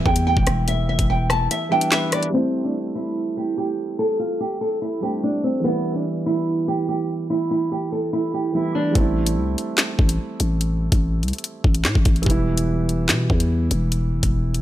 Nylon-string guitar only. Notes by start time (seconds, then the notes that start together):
0.06 G5
0.27 G5
0.68 E5
0.89 E5
1.10 G5
1.30 A5
1.51 E5
1.72 G5
1.92 E5
2.13 D5
2.33 C4
2.64 D4
2.95 E4
3.37 G4
3.58 G4
3.99 A4
4.19 F4
4.40 G4
4.61 A4
4.82 E4
5.03 G4
5.23 D4
5.44 C4
5.64 B3
5.95 D4
6.26 E4
6.68 G4
6.89 G4
7.30 E4
7.51 E4
7.72 G4
7.92 A4
8.13 E4
8.34 G4
8.55 E4
8.75 D4